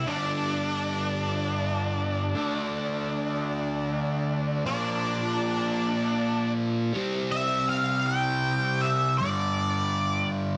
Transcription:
0, 0, Header, 1, 3, 480
1, 0, Start_track
1, 0, Tempo, 761421
1, 48, Time_signature, 6, 3, 24, 8
1, 6664, End_track
2, 0, Start_track
2, 0, Title_t, "Lead electric guitar"
2, 0, Program_c, 0, 29
2, 46, Note_on_c, 0, 62, 82
2, 2933, Note_off_c, 0, 62, 0
2, 2940, Note_on_c, 0, 62, 71
2, 4113, Note_off_c, 0, 62, 0
2, 4613, Note_on_c, 0, 76, 84
2, 4847, Note_off_c, 0, 76, 0
2, 4849, Note_on_c, 0, 77, 97
2, 5083, Note_on_c, 0, 79, 100
2, 5099, Note_off_c, 0, 77, 0
2, 5555, Note_on_c, 0, 76, 96
2, 5583, Note_off_c, 0, 79, 0
2, 5786, Note_off_c, 0, 76, 0
2, 5788, Note_on_c, 0, 74, 88
2, 6494, Note_off_c, 0, 74, 0
2, 6664, End_track
3, 0, Start_track
3, 0, Title_t, "Distorted electric guitar"
3, 0, Program_c, 1, 30
3, 35, Note_on_c, 1, 43, 75
3, 48, Note_on_c, 1, 50, 76
3, 57, Note_on_c, 1, 55, 82
3, 1470, Note_off_c, 1, 43, 0
3, 1474, Note_off_c, 1, 50, 0
3, 1481, Note_off_c, 1, 55, 0
3, 1482, Note_on_c, 1, 50, 75
3, 1493, Note_on_c, 1, 57, 74
3, 1503, Note_on_c, 1, 62, 89
3, 2915, Note_off_c, 1, 50, 0
3, 2920, Note_off_c, 1, 57, 0
3, 2931, Note_on_c, 1, 46, 76
3, 2941, Note_on_c, 1, 53, 82
3, 2951, Note_off_c, 1, 62, 0
3, 2954, Note_on_c, 1, 58, 88
3, 4359, Note_off_c, 1, 46, 0
3, 4364, Note_off_c, 1, 53, 0
3, 4370, Note_off_c, 1, 58, 0
3, 4370, Note_on_c, 1, 48, 82
3, 4383, Note_on_c, 1, 55, 94
3, 4394, Note_on_c, 1, 60, 102
3, 5796, Note_off_c, 1, 48, 0
3, 5803, Note_off_c, 1, 55, 0
3, 5806, Note_on_c, 1, 43, 91
3, 5809, Note_off_c, 1, 60, 0
3, 5820, Note_on_c, 1, 50, 96
3, 5828, Note_on_c, 1, 55, 95
3, 6664, Note_off_c, 1, 43, 0
3, 6664, Note_off_c, 1, 50, 0
3, 6664, Note_off_c, 1, 55, 0
3, 6664, End_track
0, 0, End_of_file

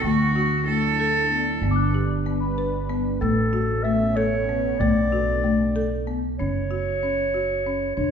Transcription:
0, 0, Header, 1, 7, 480
1, 0, Start_track
1, 0, Tempo, 634921
1, 31, Time_signature, 5, 3, 24, 8
1, 6131, End_track
2, 0, Start_track
2, 0, Title_t, "Celesta"
2, 0, Program_c, 0, 8
2, 1294, Note_on_c, 0, 86, 59
2, 1329, Note_on_c, 0, 90, 42
2, 1818, Note_on_c, 0, 83, 41
2, 2636, Note_off_c, 0, 83, 0
2, 2641, Note_off_c, 0, 86, 0
2, 2659, Note_off_c, 0, 90, 0
2, 6131, End_track
3, 0, Start_track
3, 0, Title_t, "Clarinet"
3, 0, Program_c, 1, 71
3, 2425, Note_on_c, 1, 69, 86
3, 2900, Note_on_c, 1, 76, 93
3, 2911, Note_off_c, 1, 69, 0
3, 3144, Note_on_c, 1, 73, 94
3, 3156, Note_off_c, 1, 76, 0
3, 3624, Note_on_c, 1, 74, 92
3, 3635, Note_off_c, 1, 73, 0
3, 4586, Note_off_c, 1, 74, 0
3, 4827, Note_on_c, 1, 73, 89
3, 5998, Note_off_c, 1, 73, 0
3, 6016, Note_on_c, 1, 73, 79
3, 6131, Note_off_c, 1, 73, 0
3, 6131, End_track
4, 0, Start_track
4, 0, Title_t, "Cello"
4, 0, Program_c, 2, 42
4, 32, Note_on_c, 2, 66, 86
4, 481, Note_off_c, 2, 66, 0
4, 509, Note_on_c, 2, 69, 82
4, 1438, Note_off_c, 2, 69, 0
4, 6131, End_track
5, 0, Start_track
5, 0, Title_t, "Marimba"
5, 0, Program_c, 3, 12
5, 33, Note_on_c, 3, 57, 77
5, 221, Note_off_c, 3, 57, 0
5, 270, Note_on_c, 3, 66, 69
5, 459, Note_off_c, 3, 66, 0
5, 513, Note_on_c, 3, 57, 62
5, 700, Note_off_c, 3, 57, 0
5, 754, Note_on_c, 3, 69, 79
5, 941, Note_off_c, 3, 69, 0
5, 991, Note_on_c, 3, 59, 67
5, 1179, Note_off_c, 3, 59, 0
5, 1232, Note_on_c, 3, 59, 79
5, 1419, Note_off_c, 3, 59, 0
5, 1470, Note_on_c, 3, 67, 68
5, 1658, Note_off_c, 3, 67, 0
5, 1710, Note_on_c, 3, 59, 64
5, 1898, Note_off_c, 3, 59, 0
5, 1951, Note_on_c, 3, 71, 73
5, 2138, Note_off_c, 3, 71, 0
5, 2189, Note_on_c, 3, 59, 73
5, 2377, Note_off_c, 3, 59, 0
5, 2429, Note_on_c, 3, 57, 72
5, 2617, Note_off_c, 3, 57, 0
5, 2669, Note_on_c, 3, 66, 74
5, 2857, Note_off_c, 3, 66, 0
5, 2910, Note_on_c, 3, 57, 68
5, 3098, Note_off_c, 3, 57, 0
5, 3151, Note_on_c, 3, 69, 78
5, 3338, Note_off_c, 3, 69, 0
5, 3394, Note_on_c, 3, 59, 70
5, 3581, Note_off_c, 3, 59, 0
5, 3637, Note_on_c, 3, 57, 82
5, 3822, Note_off_c, 3, 57, 0
5, 3873, Note_on_c, 3, 66, 69
5, 4060, Note_off_c, 3, 66, 0
5, 4113, Note_on_c, 3, 57, 63
5, 4300, Note_off_c, 3, 57, 0
5, 4353, Note_on_c, 3, 69, 79
5, 4540, Note_off_c, 3, 69, 0
5, 4591, Note_on_c, 3, 59, 66
5, 4779, Note_off_c, 3, 59, 0
5, 4834, Note_on_c, 3, 61, 68
5, 5021, Note_off_c, 3, 61, 0
5, 5070, Note_on_c, 3, 66, 63
5, 5258, Note_off_c, 3, 66, 0
5, 5314, Note_on_c, 3, 61, 60
5, 5500, Note_off_c, 3, 61, 0
5, 5551, Note_on_c, 3, 66, 67
5, 5739, Note_off_c, 3, 66, 0
5, 5795, Note_on_c, 3, 61, 59
5, 5981, Note_off_c, 3, 61, 0
5, 6026, Note_on_c, 3, 62, 67
5, 6131, Note_off_c, 3, 62, 0
5, 6131, End_track
6, 0, Start_track
6, 0, Title_t, "Analog synth pad"
6, 0, Program_c, 4, 89
6, 0, Note_on_c, 4, 62, 85
6, 36, Note_on_c, 4, 64, 81
6, 37, Note_on_c, 4, 54, 77
6, 1220, Note_off_c, 4, 54, 0
6, 1220, Note_off_c, 4, 64, 0
6, 1220, Note_on_c, 4, 55, 80
6, 1220, Note_on_c, 4, 71, 89
6, 2395, Note_off_c, 4, 62, 0
6, 2411, Note_off_c, 4, 55, 0
6, 2412, Note_off_c, 4, 71, 0
6, 2425, Note_on_c, 4, 57, 82
6, 2426, Note_on_c, 4, 59, 72
6, 2427, Note_on_c, 4, 61, 89
6, 3614, Note_off_c, 4, 57, 0
6, 3615, Note_off_c, 4, 61, 0
6, 3629, Note_on_c, 4, 57, 79
6, 3639, Note_on_c, 4, 62, 87
6, 4803, Note_off_c, 4, 59, 0
6, 4817, Note_off_c, 4, 57, 0
6, 4822, Note_off_c, 4, 62, 0
6, 6131, End_track
7, 0, Start_track
7, 0, Title_t, "Upright bass"
7, 0, Program_c, 5, 32
7, 24, Note_on_c, 5, 38, 66
7, 1202, Note_off_c, 5, 38, 0
7, 1222, Note_on_c, 5, 31, 70
7, 2400, Note_off_c, 5, 31, 0
7, 2433, Note_on_c, 5, 33, 72
7, 3606, Note_off_c, 5, 33, 0
7, 3630, Note_on_c, 5, 35, 76
7, 4805, Note_off_c, 5, 35, 0
7, 4837, Note_on_c, 5, 30, 64
7, 6009, Note_off_c, 5, 30, 0
7, 6029, Note_on_c, 5, 28, 64
7, 6131, Note_off_c, 5, 28, 0
7, 6131, End_track
0, 0, End_of_file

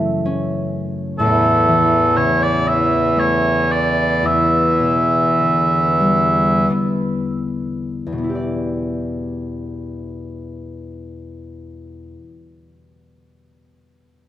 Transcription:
0, 0, Header, 1, 3, 480
1, 0, Start_track
1, 0, Tempo, 958466
1, 592, Time_signature, 3, 2, 24, 8
1, 1078, Tempo, 1001669
1, 1558, Tempo, 1060071
1, 2038, Tempo, 1156069
1, 2518, Tempo, 1330377
1, 2998, Tempo, 1503759
1, 4438, Tempo, 1534527
1, 5400, End_track
2, 0, Start_track
2, 0, Title_t, "Bagpipes"
2, 0, Program_c, 0, 109
2, 593, Note_on_c, 0, 40, 89
2, 593, Note_on_c, 0, 52, 89
2, 593, Note_on_c, 0, 69, 68
2, 1085, Note_off_c, 0, 69, 0
2, 1085, Note_on_c, 0, 73, 64
2, 1208, Note_off_c, 0, 73, 0
2, 1208, Note_on_c, 0, 74, 67
2, 1329, Note_off_c, 0, 74, 0
2, 1329, Note_on_c, 0, 76, 70
2, 1575, Note_off_c, 0, 76, 0
2, 1575, Note_on_c, 0, 73, 59
2, 1810, Note_off_c, 0, 73, 0
2, 1810, Note_on_c, 0, 74, 66
2, 2057, Note_off_c, 0, 74, 0
2, 2057, Note_on_c, 0, 76, 66
2, 2991, Note_off_c, 0, 40, 0
2, 2991, Note_off_c, 0, 52, 0
2, 2991, Note_off_c, 0, 76, 0
2, 5400, End_track
3, 0, Start_track
3, 0, Title_t, "Harp"
3, 0, Program_c, 1, 46
3, 0, Note_on_c, 1, 42, 48
3, 0, Note_on_c, 1, 49, 40
3, 0, Note_on_c, 1, 52, 43
3, 0, Note_on_c, 1, 57, 43
3, 0, Note_on_c, 1, 59, 48
3, 128, Note_on_c, 1, 61, 53
3, 243, Note_off_c, 1, 59, 0
3, 599, Note_on_c, 1, 45, 53
3, 617, Note_off_c, 1, 42, 0
3, 617, Note_off_c, 1, 49, 0
3, 617, Note_off_c, 1, 52, 0
3, 843, Note_on_c, 1, 52, 35
3, 1085, Note_on_c, 1, 49, 45
3, 1101, Note_off_c, 1, 45, 0
3, 1101, Note_off_c, 1, 52, 0
3, 1325, Note_on_c, 1, 64, 41
3, 1529, Note_off_c, 1, 57, 0
3, 1557, Note_off_c, 1, 61, 0
3, 1562, Note_on_c, 1, 57, 45
3, 2044, Note_on_c, 1, 40, 42
3, 2058, Note_off_c, 1, 49, 0
3, 2279, Note_on_c, 1, 47, 32
3, 2480, Note_off_c, 1, 64, 0
3, 2524, Note_on_c, 1, 50, 36
3, 2535, Note_off_c, 1, 47, 0
3, 2745, Note_on_c, 1, 55, 32
3, 2923, Note_off_c, 1, 57, 0
3, 2998, Note_on_c, 1, 59, 40
3, 3430, Note_off_c, 1, 40, 0
3, 3434, Note_on_c, 1, 40, 30
3, 3452, Note_on_c, 1, 47, 29
3, 3469, Note_off_c, 1, 59, 0
3, 3471, Note_on_c, 1, 59, 30
3, 3489, Note_on_c, 1, 64, 26
3, 3495, Note_off_c, 1, 50, 0
3, 3495, Note_off_c, 1, 55, 0
3, 3506, Note_on_c, 1, 67, 28
3, 3525, Note_on_c, 1, 74, 36
3, 4726, Note_off_c, 1, 40, 0
3, 4745, Note_off_c, 1, 47, 0
3, 4763, Note_off_c, 1, 59, 0
3, 4781, Note_off_c, 1, 64, 0
3, 4798, Note_off_c, 1, 67, 0
3, 4816, Note_off_c, 1, 74, 0
3, 5400, End_track
0, 0, End_of_file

